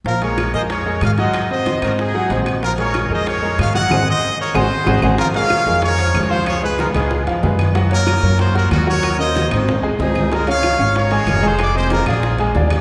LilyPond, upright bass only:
\new Staff \with { instrumentName = "Upright bass" } { \clef bass \time 4/4 \key bes \minor \tempo 4 = 187 bes,,4. f,4. aes,4~ | aes,4. aes,4. bes,,4~ | bes,,4. f,4. aes,4 | aes,,8 r4. aes,,8 r8 aes,,8 aes,,8 |
r4. f,4. des,4~ | des,4. des,4 f,8 ges,4~ | ges,4. ges,4. ees,4~ | ees,4. aes,,4 c,8 des,4~ |
des,4. aes,,4. f,,4~ | f,,4. bes,,4. ees,4 | }